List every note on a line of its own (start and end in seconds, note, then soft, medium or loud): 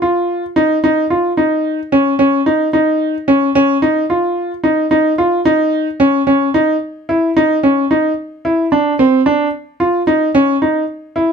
0.02 0.43 F4 medium
0.56 0.76 D#4 medium
0.84 1.04 D#4 medium
1.10 1.31 F4 medium
1.37 1.78 D#4 medium
1.92 2.13 C#4 medium
2.19 2.39 C#4 medium
2.46 2.67 D#4 medium
2.73 3.14 D#4 medium
3.28 3.48 C#4 medium
3.55 3.76 C#4 medium
3.82 4.03 D#4 medium
4.10 4.50 F4 medium
4.64 4.84 D#4 medium
4.91 5.11 D#4 medium
5.18 5.39 F4 medium
5.45 5.86 D#4 medium
6.00 6.20 C#4 medium
6.27 6.47 C#4 medium
6.54 6.75 D#4 medium
7.09 7.29 E4 medium
7.37 7.57 D#4 medium
7.63 7.84 C#4 medium
7.91 8.11 D#4 medium
8.45 8.65 E4 medium
8.72 8.92 D4 medium
8.99 9.19 C4 medium
9.26 9.46 D4 medium
9.80 10.00 F4 medium
10.07 10.28 D#4 medium
10.35 10.55 C#4 medium
10.62 10.82 D#4 medium
11.16 11.32 E4 medium